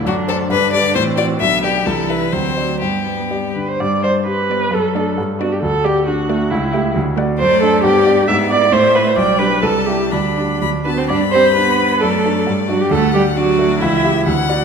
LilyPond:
<<
  \new Staff \with { instrumentName = "Violin" } { \time 2/4 \key g \major \tempo 4 = 133 fis'8 a'8 b'8 d''8 | c''8 d''8 e''8 g'8 | a'8 b'8 c''4 | g'4. r8 |
r8 d''8 r8 d''8 | r8 d''8 r8 d''8 | r8 d''8 r8 d''8 | r8 g''8 r8 fis''8 |
d''4 d''4 | d''4 e''4 | g''4 a''4 | b''4 b''8 a''8 |
b''2 | d''2 | fis''4 d''4 | e''4 fis''4 | }
  \new Staff \with { instrumentName = "Viola" } { \time 2/4 \key g \major d'4 d'4 | c'4 b4 | e'4 c'4 | b4. b'16 c''16 |
d''8 c''8 b'4 | a'4 r8 fis'16 g'16 | a'8 g'8 fis'4 | e'4 r4 |
c''8 a'8 g'4 | e''8 d''8 c''8 b'16 c''16 | d''8 b'8 a'8 g'8 | d'4. b'16 c''16 |
d''8 c''8 b'4 | a'4 r8 fis'16 g'16 | a'8 g'8 fis'4 | e'4 r4 | }
  \new Staff \with { instrumentName = "Grand piano" } { \time 2/4 \key g \major fis,8 <a' c''>8 g,8 <g' b'>8 | a,8 <fis' d''>8 b,,8 <g' d''>8 | c,8 <e' e''>8 d,8 <fis' d''>8 | g,8 b8 <g' d''>8 d8 |
g,8 d''8 g'8 b8 | fis,8 <d' d''>8 g,8 <d' d''>8 | d,8 d''8 d'8 a8 | cis,8 <g' e''>8 d,8 <fis' d''>8 |
fis,8 <d' d''>8 g,8 <d' d''>8 | gis,8 <e' d''>8 a,8 <e' c''>8 | b,,8 <d' g'>8 c,8 <e' g'>8 | d,8 <d' g'>8 d,8 <d' fis'>8 |
g,8 g'8 d'8 b8 | fis,8 <d' a'>8 g,8 <d' d''>8 | d,8 d''8 d'8 a8 | cis,8 <g' e''>8 d,8 <fis' d''>8 | }
  \new Staff \with { instrumentName = "Cello" } { \clef bass \time 2/4 \key g \major d4 d4 | e4 d4 | e4 fis4 | g4. r8 |
r8 g8 r8 g8 | r8 a8 r8 b8 | r8 a8 r8 a8 | r8 a8 r8 a8 |
a4 b4 | b4 a4 | g4 g4 | g4 fis8 b16 c'16 |
d'8 c'8 b4 | a4 r8 fis16 g16 | a8 g8 fis4 | e4 r4 | }
>>